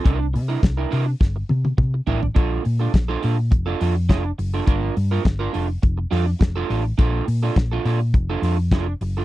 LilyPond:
<<
  \new Staff \with { instrumentName = "Clean electric guitar" } { \time 4/4 \key f \major \tempo 4 = 104 <d' e' bes'>16 r8 <d' e' bes'>16 r16 <d' e' bes'>16 <d' e' bes'>16 r4. r16 <d' e' bes'>16 r16 | <d' f' a'>8 r16 <d' f' a'>16 r16 <d' f' a'>16 <d' f' a'>16 r8 <d' f' a'>16 <d' f' a'>16 r16 <d' f' a'>16 r8 <d' f' a'>16 | <d' f' bes'>8 r16 <d' f' bes'>16 r16 <d' f' bes'>16 <d' f' a'>16 r8. <d' f' a'>16 r8 <d' f' a'>16 <d' f' a'>16 r16 | <d' f' a'>8 r16 <d' f' a'>16 r16 <d' f' a'>16 <d' f' a'>16 r8 <d' f' a'>16 <d' f' a'>16 r16 <d' f' a'>16 r8 <d' f' a'>16 | }
  \new Staff \with { instrumentName = "Fingered electric bass" } { \clef bass \time 4/4 \key f \major c,8 c8 c,8 c8 g,,8 c8 c8 a,,8 | bes,,8 bes,8 bes,,8 bes,8 f,,8 f,8 f,,8 fis,,8 | g,,8 g,8 g,,8 f,,8 f,,8 f,8 f,,8 a,,8 | bes,,8 bes,8 bes,,8 bes,8 f,,8 f,8 f,,8 fis,,8 | }
  \new DrumStaff \with { instrumentName = "Drums" } \drummode { \time 4/4 <hh bd>8 hho8 <hh bd sn>8 hho8 <bd sn>8 tommh16 tommh16 <bd toml>8 tomfh16 tomfh16 | <hh bd>8 hho8 <hh bd sn>8 hho8 <hh bd>8 hho8 <hh bd sn>8 hho8 | <hh bd>8 hho8 <hh bd sn>8 hho8 <hh bd>8 hho8 <hh bd sn>8 hho8 | <hh bd>8 hho8 <hh bd sn>8 hho8 <hh bd>8 hho8 <hh bd sn>8 hho8 | }
>>